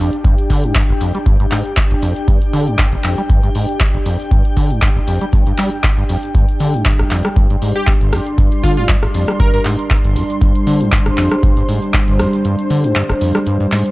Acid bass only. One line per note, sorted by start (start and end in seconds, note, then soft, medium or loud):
0.00 0.10 F2 medium
0.25 0.36 G2 medium
0.50 0.65 D3 loud
0.64 0.73 G#2 medium
0.75 0.83 G2 medium
0.89 0.93 G1 loud
1.01 1.12 F2 medium
1.15 1.18 G3 medium
1.26 1.38 G2 medium
1.40 1.46 G2 medium
1.52 1.63 G#2 medium
1.91 1.95 G1 loud
2.03 2.14 F2 medium
2.28 2.39 G2 medium
2.53 2.69 D3 loud
2.67 2.77 G#2 medium
2.79 2.86 G2 medium
2.93 2.96 G1 loud
3.04 3.16 F2 medium
3.18 3.22 G3 medium
3.30 3.41 G2 medium
3.43 3.50 G2 medium
3.55 3.66 G#2 medium
3.94 3.98 G1 loud
4.06 4.17 F2 medium
4.31 4.43 G2 medium
4.57 4.72 D3 loud
4.71 4.80 G#2 medium
4.82 4.90 G2 medium
4.96 5.00 G1 loud
5.08 5.19 F2 medium
5.21 5.25 G3 medium
5.33 5.44 G2 medium
5.47 5.53 G2 medium
5.58 5.70 G3 loud
5.98 6.04 G2 medium
6.09 6.17 F2 medium
6.35 6.46 G2 medium
6.60 6.75 D3 loud
6.74 6.84 G#2 medium
6.86 6.93 G2 medium
6.99 7.03 G1 loud
7.11 7.22 F2 medium
7.25 7.29 G3 medium
7.36 7.48 G2 medium
7.50 7.57 G2 medium
7.62 7.73 G#2 medium
8.01 8.14 G1 loud
8.13 8.20 G2 medium
8.38 8.49 G2 medium
8.64 8.79 D3 loud
8.77 8.87 G#2 medium
8.89 8.97 G2 medium
9.03 9.07 G1 loud
9.14 9.26 F2 medium
9.28 9.32 G3 medium
9.40 9.51 G2 medium
9.54 9.60 G2 medium
9.65 9.77 G#2 medium
10.04 10.18 G1 loud
10.16 10.24 G2 medium
10.41 10.53 G2 medium
10.67 10.82 D3 loud
10.81 10.90 G#2 medium
10.92 11.00 G2 medium
11.06 11.10 G1 loud
11.18 11.29 F2 medium
11.31 11.35 G3 medium
11.43 11.54 G2 medium
11.57 11.63 G2 medium
11.69 11.80 G#2 medium
12.08 12.21 G1 loud
12.19 12.27 G2 medium
12.45 12.56 G2 medium
12.70 12.86 D3 loud
12.84 12.94 G#2 medium
12.96 13.03 G2 medium
13.10 13.13 G1 loud
13.21 13.33 F2 medium
13.35 13.39 G3 medium
13.47 13.58 G2 medium
13.60 13.67 G2 medium
13.72 13.83 G#2 medium